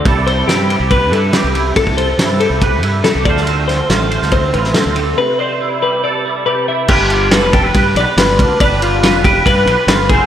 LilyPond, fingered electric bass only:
\new Staff \with { instrumentName = "Fingered electric bass" } { \clef bass \time 4/4 \key g \mixolydian \tempo 4 = 140 c,4 g,8. c,8. g,8 r16 c,8. | c,4 g,8. c,8. g,8 r16 c,16 d,8~ | d,4 a,,8. d,8. a,,8 r16 d,8. | r1 |
g,,4~ g,,16 f,,8. g,8 b,,16 r16 g,,8 d,16 r16 | g,,4~ g,,16 f,,8. g,8 b,,16 r16 g,,8 fis,,16 r16 | }